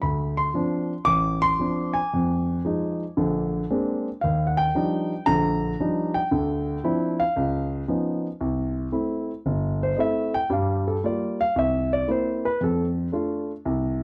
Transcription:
0.02 D2 B5
0.37 C6
0.54 F3 C4 D4
1.05 A1 D6
1.42 C6
1.59 F3 C4 D4
1.94 G#5
2.13 F2
2.65 F3 G#3 D#4
3.17 A#1 D3
3.70 G#3 A#3 C4 D4
4.21 D#2 F5
4.47 F#5
4.57 G5
4.75 F3 G3 D4 D#4
5.26 A#1 D3 A#5
5.80 F3 G3 D4 D#4
6.14 G5
6.31 D2 D3
6.84 F3 C4 D4 E4
7.20 F5
7.36 C#2
7.88 F3 B3 C#4 D#4
8.41 C2
8.92 A3 C4 E4
9.46 G1
9.83 C5
9.96 A3 C4 E4 D#5
10.00 E5
10.34 G5
10.50 G2 G3 F5
10.88 A4
11.03 G3 A#3 F4 D5
11.41 F5
11.56 C2 E5
11.93 D5
12.08 A#3 C4 E4 C5
12.45 B4
12.61 F2 A4
13.12 A3 D4 F4
13.65 C2

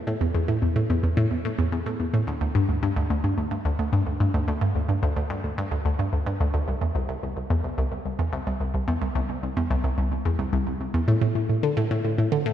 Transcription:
0.07 A2
0.21 E2
0.35 E2
0.48 A2
0.62 E2
0.76 A2
0.90 E2
1.03 E2
1.17 A2
1.31 E2
1.45 A2
1.59 E2
1.72 E2
1.86 A2
2.00 E2
2.14 A2
2.27 D2
2.41 D2
2.55 G2
2.69 D2
2.83 G2
2.96 D2
3.10 D2
3.24 G2
3.38 D2
3.51 G2
3.65 D2
3.79 D2
3.93 G2
4.06 D2
4.20 G2
4.34 D2
4.48 D2
4.61 G2
4.75 D2
4.89 G2
5.03 D2
5.16 D2
5.30 G2
5.44 D2
5.58 G2
5.71 D2
5.85 D2
5.99 G2
6.13 D2
6.26 G2
6.40 D2
6.54 D2
6.68 C2
6.81 E2
6.95 C2
7.09 C2
7.23 C2
7.37 C2
7.50 E2
7.64 C2
7.78 C2
7.92 C2
8.05 C2
8.19 E2
8.33 C2
8.47 C2
8.60 C2
8.74 C2
8.88 E2
9.02 C2
9.15 C2
9.29 C2
9.43 C2
9.57 E2
9.70 C2
9.84 C2
9.98 C2
10.11 C2
10.25 E2
10.39 C2
10.53 C2
10.67 C2
10.80 C2
10.94 E2
11.08 A2
11.21 A2
11.35 A2
11.49 A2
11.63 D3
11.77 A2
11.91 A2
12.05 A2
12.18 A2
12.32 D3
12.46 A2

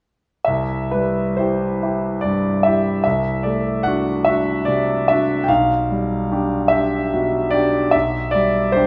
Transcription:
0.45 C2 E5
0.91 G3 B4
1.37 E4 G4 C5
1.83 E4 G4
2.21 G2 D5
2.63 E4 G4 E5
3.04 C2 E5
3.43 A3 D5
3.83 D4 F#4 F#5
4.25 D4 F#4 E5
4.65 C3 D5
5.08 D4 F#4 E5
5.44 G5
5.48 B1 F5
5.90 G3
6.32 D4 G4
6.68 D4 E5
6.72 G4
7.13 B2
7.51 D4 G4 D5
7.91 B1 E5
8.31 G3 D5
8.72 D4 C5
8.76 G4

